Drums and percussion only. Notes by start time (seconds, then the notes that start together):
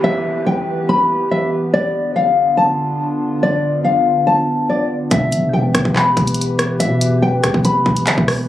5.11 kick, closed hi-hat
5.32 closed hi-hat
5.75 kick, cross-stick, closed hi-hat
5.85 kick
5.96 clap
6.17 kick, closed hi-hat
6.27 closed hi-hat
6.34 closed hi-hat
6.41 closed hi-hat
6.59 cross-stick, closed hi-hat
6.80 closed hi-hat
7.01 closed hi-hat
7.44 kick, cross-stick, closed hi-hat
7.54 kick
7.65 closed hi-hat
7.86 kick
7.97 closed hi-hat
8.07 clap, closed hi-hat
8.18 kick
8.28 cross-stick, open hi-hat